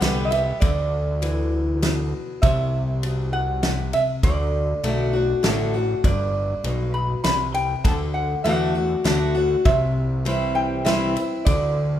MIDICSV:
0, 0, Header, 1, 5, 480
1, 0, Start_track
1, 0, Tempo, 603015
1, 492, Time_signature, 3, 2, 24, 8
1, 9549, End_track
2, 0, Start_track
2, 0, Title_t, "Resonator guitar played with a steel bar"
2, 0, Program_c, 0, 25
2, 0, Note_on_c, 0, 78, 117
2, 163, Note_off_c, 0, 78, 0
2, 199, Note_on_c, 0, 75, 73
2, 240, Note_off_c, 0, 75, 0
2, 243, Note_on_c, 0, 76, 99
2, 476, Note_off_c, 0, 76, 0
2, 479, Note_on_c, 0, 74, 80
2, 1173, Note_off_c, 0, 74, 0
2, 1925, Note_on_c, 0, 76, 97
2, 2647, Note_off_c, 0, 76, 0
2, 2650, Note_on_c, 0, 78, 103
2, 3133, Note_on_c, 0, 76, 102
2, 3144, Note_off_c, 0, 78, 0
2, 3197, Note_off_c, 0, 76, 0
2, 3373, Note_on_c, 0, 74, 87
2, 4059, Note_off_c, 0, 74, 0
2, 4815, Note_on_c, 0, 74, 84
2, 5499, Note_off_c, 0, 74, 0
2, 5523, Note_on_c, 0, 83, 105
2, 5748, Note_off_c, 0, 83, 0
2, 5761, Note_on_c, 0, 83, 112
2, 5987, Note_off_c, 0, 83, 0
2, 6005, Note_on_c, 0, 79, 106
2, 6243, Note_on_c, 0, 81, 101
2, 6253, Note_off_c, 0, 79, 0
2, 6308, Note_off_c, 0, 81, 0
2, 6480, Note_on_c, 0, 78, 81
2, 6706, Note_off_c, 0, 78, 0
2, 6719, Note_on_c, 0, 78, 87
2, 7411, Note_off_c, 0, 78, 0
2, 7685, Note_on_c, 0, 76, 92
2, 8374, Note_off_c, 0, 76, 0
2, 8399, Note_on_c, 0, 79, 109
2, 8639, Note_on_c, 0, 76, 92
2, 8650, Note_off_c, 0, 79, 0
2, 9112, Note_off_c, 0, 76, 0
2, 9116, Note_on_c, 0, 74, 87
2, 9549, Note_off_c, 0, 74, 0
2, 9549, End_track
3, 0, Start_track
3, 0, Title_t, "Steel-string acoustic guitar"
3, 0, Program_c, 1, 25
3, 5, Note_on_c, 1, 50, 92
3, 12, Note_on_c, 1, 55, 97
3, 18, Note_on_c, 1, 59, 102
3, 20, Note_on_c, 1, 67, 111
3, 234, Note_off_c, 1, 67, 0
3, 239, Note_off_c, 1, 50, 0
3, 242, Note_off_c, 1, 55, 0
3, 243, Note_on_c, 1, 67, 62
3, 245, Note_off_c, 1, 59, 0
3, 261, Note_on_c, 1, 59, 55
3, 478, Note_off_c, 1, 67, 0
3, 487, Note_off_c, 1, 59, 0
3, 489, Note_on_c, 1, 50, 97
3, 971, Note_on_c, 1, 52, 93
3, 1402, Note_off_c, 1, 50, 0
3, 1427, Note_off_c, 1, 52, 0
3, 1452, Note_on_c, 1, 47, 100
3, 1907, Note_off_c, 1, 47, 0
3, 1931, Note_on_c, 1, 48, 92
3, 2413, Note_on_c, 1, 47, 93
3, 2842, Note_off_c, 1, 48, 0
3, 2867, Note_off_c, 1, 47, 0
3, 2899, Note_on_c, 1, 48, 94
3, 3350, Note_off_c, 1, 48, 0
3, 3374, Note_on_c, 1, 50, 98
3, 3840, Note_off_c, 1, 50, 0
3, 3849, Note_on_c, 1, 50, 91
3, 3854, Note_on_c, 1, 57, 92
3, 3859, Note_on_c, 1, 62, 93
3, 3864, Note_on_c, 1, 66, 92
3, 4075, Note_off_c, 1, 66, 0
3, 4079, Note_off_c, 1, 50, 0
3, 4081, Note_off_c, 1, 57, 0
3, 4084, Note_off_c, 1, 62, 0
3, 4084, Note_on_c, 1, 66, 62
3, 4102, Note_on_c, 1, 62, 49
3, 4316, Note_off_c, 1, 66, 0
3, 4321, Note_on_c, 1, 50, 94
3, 4325, Note_off_c, 1, 62, 0
3, 4330, Note_on_c, 1, 57, 94
3, 4334, Note_on_c, 1, 62, 100
3, 4339, Note_on_c, 1, 66, 113
3, 4555, Note_off_c, 1, 50, 0
3, 4557, Note_off_c, 1, 66, 0
3, 4559, Note_off_c, 1, 57, 0
3, 4561, Note_off_c, 1, 62, 0
3, 4567, Note_on_c, 1, 66, 63
3, 4584, Note_on_c, 1, 62, 49
3, 4798, Note_off_c, 1, 66, 0
3, 4806, Note_off_c, 1, 62, 0
3, 4814, Note_on_c, 1, 43, 102
3, 5293, Note_on_c, 1, 47, 95
3, 5722, Note_off_c, 1, 43, 0
3, 5746, Note_off_c, 1, 47, 0
3, 5772, Note_on_c, 1, 48, 90
3, 6225, Note_off_c, 1, 48, 0
3, 6246, Note_on_c, 1, 50, 92
3, 6713, Note_off_c, 1, 50, 0
3, 6722, Note_on_c, 1, 50, 85
3, 6730, Note_on_c, 1, 57, 99
3, 6734, Note_on_c, 1, 62, 102
3, 6739, Note_on_c, 1, 66, 111
3, 6954, Note_off_c, 1, 66, 0
3, 6955, Note_off_c, 1, 50, 0
3, 6959, Note_off_c, 1, 57, 0
3, 6961, Note_off_c, 1, 62, 0
3, 6964, Note_on_c, 1, 66, 67
3, 6980, Note_on_c, 1, 62, 54
3, 7195, Note_off_c, 1, 66, 0
3, 7199, Note_on_c, 1, 50, 99
3, 7200, Note_off_c, 1, 62, 0
3, 7205, Note_on_c, 1, 57, 107
3, 7210, Note_on_c, 1, 62, 94
3, 7215, Note_on_c, 1, 66, 105
3, 7430, Note_off_c, 1, 66, 0
3, 7433, Note_off_c, 1, 50, 0
3, 7436, Note_off_c, 1, 57, 0
3, 7438, Note_off_c, 1, 62, 0
3, 7439, Note_on_c, 1, 66, 74
3, 7454, Note_on_c, 1, 62, 51
3, 7673, Note_off_c, 1, 66, 0
3, 7681, Note_off_c, 1, 62, 0
3, 7683, Note_on_c, 1, 48, 95
3, 8160, Note_on_c, 1, 52, 88
3, 8165, Note_on_c, 1, 55, 88
3, 8170, Note_on_c, 1, 60, 97
3, 8177, Note_on_c, 1, 64, 88
3, 8597, Note_off_c, 1, 48, 0
3, 8620, Note_off_c, 1, 52, 0
3, 8622, Note_off_c, 1, 55, 0
3, 8625, Note_off_c, 1, 60, 0
3, 8628, Note_off_c, 1, 64, 0
3, 8634, Note_on_c, 1, 52, 95
3, 8642, Note_on_c, 1, 55, 98
3, 8648, Note_on_c, 1, 60, 105
3, 8652, Note_on_c, 1, 64, 106
3, 8870, Note_off_c, 1, 64, 0
3, 8871, Note_off_c, 1, 52, 0
3, 8875, Note_off_c, 1, 55, 0
3, 8878, Note_off_c, 1, 60, 0
3, 8880, Note_on_c, 1, 64, 62
3, 8896, Note_on_c, 1, 60, 53
3, 9114, Note_off_c, 1, 64, 0
3, 9122, Note_off_c, 1, 60, 0
3, 9129, Note_on_c, 1, 50, 94
3, 9549, Note_off_c, 1, 50, 0
3, 9549, End_track
4, 0, Start_track
4, 0, Title_t, "Analog synth bass"
4, 0, Program_c, 2, 38
4, 12, Note_on_c, 2, 36, 97
4, 420, Note_off_c, 2, 36, 0
4, 495, Note_on_c, 2, 38, 97
4, 1702, Note_off_c, 2, 38, 0
4, 1932, Note_on_c, 2, 36, 99
4, 3140, Note_off_c, 2, 36, 0
4, 3369, Note_on_c, 2, 38, 98
4, 3772, Note_off_c, 2, 38, 0
4, 3849, Note_on_c, 2, 35, 81
4, 4256, Note_off_c, 2, 35, 0
4, 4330, Note_on_c, 2, 33, 92
4, 4737, Note_off_c, 2, 33, 0
4, 4808, Note_on_c, 2, 31, 98
4, 5211, Note_off_c, 2, 31, 0
4, 5285, Note_on_c, 2, 35, 87
4, 5694, Note_off_c, 2, 35, 0
4, 5766, Note_on_c, 2, 36, 86
4, 6174, Note_off_c, 2, 36, 0
4, 6245, Note_on_c, 2, 38, 102
4, 6649, Note_off_c, 2, 38, 0
4, 6725, Note_on_c, 2, 40, 94
4, 7133, Note_off_c, 2, 40, 0
4, 7203, Note_on_c, 2, 38, 90
4, 7612, Note_off_c, 2, 38, 0
4, 7685, Note_on_c, 2, 36, 85
4, 8897, Note_off_c, 2, 36, 0
4, 9126, Note_on_c, 2, 38, 94
4, 9549, Note_off_c, 2, 38, 0
4, 9549, End_track
5, 0, Start_track
5, 0, Title_t, "Drums"
5, 16, Note_on_c, 9, 38, 103
5, 16, Note_on_c, 9, 51, 72
5, 95, Note_off_c, 9, 38, 0
5, 95, Note_off_c, 9, 51, 0
5, 253, Note_on_c, 9, 51, 61
5, 333, Note_off_c, 9, 51, 0
5, 492, Note_on_c, 9, 51, 65
5, 494, Note_on_c, 9, 36, 119
5, 571, Note_off_c, 9, 51, 0
5, 573, Note_off_c, 9, 36, 0
5, 974, Note_on_c, 9, 51, 66
5, 1054, Note_off_c, 9, 51, 0
5, 1455, Note_on_c, 9, 38, 102
5, 1455, Note_on_c, 9, 51, 74
5, 1534, Note_off_c, 9, 38, 0
5, 1534, Note_off_c, 9, 51, 0
5, 1933, Note_on_c, 9, 36, 125
5, 1934, Note_on_c, 9, 51, 66
5, 2013, Note_off_c, 9, 36, 0
5, 2013, Note_off_c, 9, 51, 0
5, 2412, Note_on_c, 9, 51, 61
5, 2491, Note_off_c, 9, 51, 0
5, 2889, Note_on_c, 9, 38, 105
5, 2889, Note_on_c, 9, 51, 66
5, 2968, Note_off_c, 9, 38, 0
5, 2968, Note_off_c, 9, 51, 0
5, 3129, Note_on_c, 9, 51, 59
5, 3209, Note_off_c, 9, 51, 0
5, 3369, Note_on_c, 9, 51, 67
5, 3370, Note_on_c, 9, 36, 116
5, 3449, Note_off_c, 9, 51, 0
5, 3450, Note_off_c, 9, 36, 0
5, 3851, Note_on_c, 9, 51, 68
5, 3930, Note_off_c, 9, 51, 0
5, 4328, Note_on_c, 9, 38, 102
5, 4328, Note_on_c, 9, 51, 75
5, 4408, Note_off_c, 9, 38, 0
5, 4408, Note_off_c, 9, 51, 0
5, 4809, Note_on_c, 9, 36, 119
5, 4810, Note_on_c, 9, 51, 68
5, 4888, Note_off_c, 9, 36, 0
5, 4889, Note_off_c, 9, 51, 0
5, 5287, Note_on_c, 9, 51, 63
5, 5367, Note_off_c, 9, 51, 0
5, 5765, Note_on_c, 9, 38, 110
5, 5765, Note_on_c, 9, 51, 76
5, 5845, Note_off_c, 9, 38, 0
5, 5845, Note_off_c, 9, 51, 0
5, 6005, Note_on_c, 9, 51, 59
5, 6085, Note_off_c, 9, 51, 0
5, 6246, Note_on_c, 9, 36, 116
5, 6247, Note_on_c, 9, 51, 68
5, 6326, Note_off_c, 9, 36, 0
5, 6327, Note_off_c, 9, 51, 0
5, 6729, Note_on_c, 9, 51, 56
5, 6809, Note_off_c, 9, 51, 0
5, 7205, Note_on_c, 9, 38, 108
5, 7205, Note_on_c, 9, 51, 74
5, 7285, Note_off_c, 9, 38, 0
5, 7285, Note_off_c, 9, 51, 0
5, 7684, Note_on_c, 9, 51, 58
5, 7685, Note_on_c, 9, 36, 112
5, 7764, Note_off_c, 9, 51, 0
5, 7765, Note_off_c, 9, 36, 0
5, 8168, Note_on_c, 9, 51, 63
5, 8247, Note_off_c, 9, 51, 0
5, 8646, Note_on_c, 9, 38, 102
5, 8646, Note_on_c, 9, 51, 70
5, 8726, Note_off_c, 9, 38, 0
5, 8726, Note_off_c, 9, 51, 0
5, 8887, Note_on_c, 9, 51, 57
5, 8967, Note_off_c, 9, 51, 0
5, 9125, Note_on_c, 9, 51, 77
5, 9127, Note_on_c, 9, 36, 119
5, 9204, Note_off_c, 9, 51, 0
5, 9207, Note_off_c, 9, 36, 0
5, 9549, End_track
0, 0, End_of_file